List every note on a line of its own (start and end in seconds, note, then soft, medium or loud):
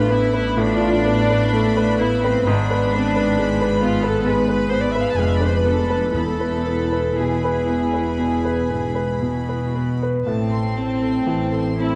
0.00 2.44 A1 medium
0.00 0.54 A2 medium
0.00 2.43 A2 medium
0.00 1.53 A3 medium
0.00 0.10 B3 medium
0.00 0.59 D4 medium
0.00 0.33 B4 medium
0.00 0.55 B5 medium
0.10 0.49 B3 medium
0.10 0.58 E4 medium
0.33 0.72 B4 medium
0.57 2.42 A2 medium
0.57 2.00 D4 medium
0.57 1.06 F4 medium
0.57 2.43 B5 medium
0.81 1.20 F4 medium
1.05 2.45 A3 medium
1.05 1.43 B3 medium
1.30 1.67 B4 medium
1.53 1.90 A3 medium
1.77 2.14 B4 medium
2.00 2.38 B3 medium
2.00 2.23 E4 medium
2.24 2.48 C4 medium
2.24 2.48 B4 medium
2.46 5.14 G#1 medium
2.46 4.22 G#2 medium
2.46 5.13 G#2 medium
2.46 2.93 B3 medium
2.46 3.82 D4 medium
2.46 4.22 B5 medium
2.70 3.07 B4 medium
2.93 3.29 B3 medium
2.93 3.38 C4 medium
3.16 3.51 B4 medium
3.38 3.73 G#3 medium
3.38 5.18 B3 medium
3.61 3.95 B4 medium
3.82 4.17 B3 medium
3.82 4.04 F4 medium
4.03 4.26 A4 medium
4.03 4.39 B4 medium
4.26 4.62 G#3 medium
4.26 4.67 B4 medium
4.26 6.10 B5 medium
4.48 4.85 B4 medium
4.68 5.08 B3 medium
4.68 4.81 C5 medium
4.81 4.91 D5 medium
4.91 5.32 B4 medium
4.91 5.00 E5 medium
5.00 5.08 F5 medium
5.09 5.15 A5 medium
5.16 6.12 F1 medium
5.16 6.12 F2 medium
5.16 5.55 G#3 medium
5.16 6.14 D4 medium
5.16 5.22 G#5 medium
5.20 5.28 F5 medium
5.28 5.36 E5 medium
5.35 5.45 D5 medium
5.41 5.79 B4 medium
5.41 5.54 C5 medium
5.54 5.64 B4 medium
5.63 6.04 B3 soft
5.63 6.12 A4 medium
5.90 6.14 B4 medium
6.13 10.06 E1 medium
6.13 7.06 E2 medium
6.13 7.65 E2 medium
6.13 8.16 E2 medium
6.13 9.72 E4 medium
6.13 7.15 A4 medium
6.13 7.15 B5 medium
6.40 6.81 B4 soft
6.66 7.07 B3 soft
6.92 7.33 B4 soft
7.17 8.67 E2 medium
7.17 7.59 B2 medium
7.17 9.75 G#4 medium
7.17 10.02 B5 soft
7.44 7.85 B4 soft
7.69 8.09 B3 soft
7.94 8.35 B4 soft
8.18 8.60 B2 soft
8.45 8.86 B4 soft
8.70 9.23 G#2 medium
8.70 9.12 B3 soft
8.95 9.38 B4 soft
9.22 9.64 B2 soft
9.22 10.28 B2 medium
9.49 9.91 B4 soft
9.75 10.17 B3 soft
10.03 10.28 B4 soft
10.26 11.16 A1 soft
10.26 11.95 A2 soft
10.26 11.16 A2 medium
10.26 11.75 C4 medium
10.26 10.51 A5 soft
10.52 10.93 A4 soft
10.52 10.78 C6 soft
10.77 11.17 C4 soft
10.77 11.02 A5 soft
11.02 11.42 A4 soft
11.02 11.28 C6 soft
11.26 11.95 A1 medium
11.26 11.95 A2 medium
11.26 11.68 E3 soft
11.26 11.51 A5 soft
11.51 11.95 A4 soft
11.51 11.80 C6 soft
11.79 11.95 C4 soft
11.79 11.95 E4 medium
11.79 11.95 A5 soft